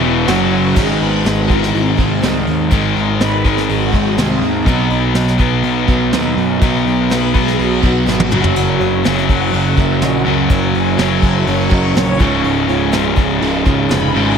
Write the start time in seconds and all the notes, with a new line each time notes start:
Already playing: E1 E2 B2 E3 B3 E4 E5
0.03 E4 B4 E5
0.26 F#1 F#2 C#3 F#3 C#4 F#4 C#5 F#5 C#6, snare, crash
0.51 F#4 C#5 F#5
0.75 G#1 G#2 D#3 G#3 C4 D#4 G#4, kick, crash
0.89 B4
1.01 G#1, open hi-hat
1.24 G#1 G#3 C4 D#4 G#4, snare, open hi-hat
1.37 F#4
1.48 G#2 D#3 G#3 C4 E4 G#4, kick, open hi-hat
1.63 snare
1.73 G#1 C4, open hi-hat
1.97 G#1 G#2 D#3 G#3 C4 D#4 G#4, kick, open hi-hat
2.21 C2 G#2 D#3 G#3 C4 D#4 G#4, snare, open hi-hat
2.47 D#2, open hi-hat
2.70 G#1 G#2 D#3 G#3 C4 D#4 G#4, kick, open hi-hat
2.96 G#1, open hi-hat
3.20 G#1 G#3 C4 D#4 G#4 B4, snare, open hi-hat
3.44 G#2 D#3 G#3 C4 D#4 G#4, kick, open hi-hat
3.57 snare
3.69 G#1 F#4, open hi-hat
3.92 G#1 G#2 D#3 G#3 C4 D#4 G#4, kick, open hi-hat
3.96 G#3
4.17 C2 G#2 D#3 G#3 C4 D#4 G#4, snare
4.42 D#2, open hi-hat
4.65 B1 B2 D#3 F#3 B3 D#4 F#4, kick, open hi-hat
4.90 B1, open hi-hat
5.15 B1 D#3 B3 D#4 F#4, snare, open hi-hat
5.27 snare
5.38 B2 F#3 B3 D#4 F#4, kick, open hi-hat
5.63 B1, open hi-hat
5.87 B1 B2 F#3 B3 D#4 F#4, kick, open hi-hat
6.11 D#2 B2 D#3 F#3 B3 D#4, snare, open hi-hat
6.15 F#4
6.37 F#2, open hi-hat
6.59 B1 B2 D#3 F#3 B3 D#4 F#4, kick, open hi-hat
6.86 B1, open hi-hat
7.10 B1 D#3 B3 D#4 F#4 B4, snare, open hi-hat
7.34 B2 F#3 B3 D#4 F#4 G#4, kick, open hi-hat
7.47 snare
7.59 B1 F#4, open hi-hat
7.82 B1 F#3 B3 D#4 F#4, kick, open hi-hat
7.86 B2
8.06 G#1 B2 D#3 F#3 B3 D#4 F#4, snare
8.20 high tom
8.30 F#1 F#2 C#3 F#3 A#3 C#4 F#4, mid tom
8.44 floor tom
8.55 F#1 F#4 A#4 C#5, open hi-hat, splash
8.78 F#1 F#4 A#4 C#5, open hi-hat
9.03 F#1 F#2 C#3 F#3 A#3 C#4 F#4 A#4 C#5, snare, open hi-hat
9.18 snare
9.28 F#3 A#3 C#4 F#4 A#4 C#5 F#5, kick, open hi-hat
9.52 F#1 F#2 C#3 F#3 F#4 A#4 C#5, open hi-hat
9.76 F#1 F#2 C#3 F#3 A#3 C#4 F#4 A#4 C#5 E5, kick, open hi-hat
9.90 C#5
10.01 A#1 F#3 A#3 C#4 F#4 A#4 D#5, snare, open hi-hat
10.24 C#2 F#2 C#3 F#3 F#4 A#4 C#5, open hi-hat
10.50 F#1 F#2 C#3 F#3 A#3 C#4 F#4 A#4 C#5, kick, open hi-hat
10.75 F#1 F#4 A#4 C#5 G#5, open hi-hat
10.88 E5
10.97 F#1 F#2 C#3 F#3 A#3 C#4 F#4 A#4 C#5, snare, open hi-hat
11.10 G#5
11.21 F#3 A#3 C#4 F#4 A#4 C5 E5, kick, open hi-hat
11.34 C#5
11.45 F#1 F#2 C#3 F#3 F#4 A#4 C#5, open hi-hat
11.69 F#1 F#2 C#3 F#3 A#3 C#4 F#4 A#4 D#5, kick, open hi-hat
11.95 A#1 F#3 A#3 C#4 F#4 A#4 C#5, snare, open hi-hat
12.19 C#1 C#2 G#2 C#3 F3 G#3 C#4 F4 G#4 C#5, kick, open hi-hat
12.44 C#1, open hi-hat
12.68 C#1 F4 G#4 C#5, open hi-hat
12.92 C#1 C#2 G#2 C#3 F3 G#3 C#4 F4 G#4 C#5, snare, open hi-hat
13.15 G#3 C#4 F4 G#4 C#5, kick, open hi-hat
13.40 C#1 C#2 G#2 C#3 F4 G#4 A#4, open hi-hat
13.64 C#1 G#2 C#3 G#3 C#4 F4 G#4 C#5, kick, open hi-hat
13.69 C#2
13.88 F1 F3 G#3 C#4 F4 G#4 C#5 B5, snare, open hi-hat
13.92 F4
14.13 G#1 C#2 G#2 C#3 F4 G#4 C5, open hi-hat
14.23 G#5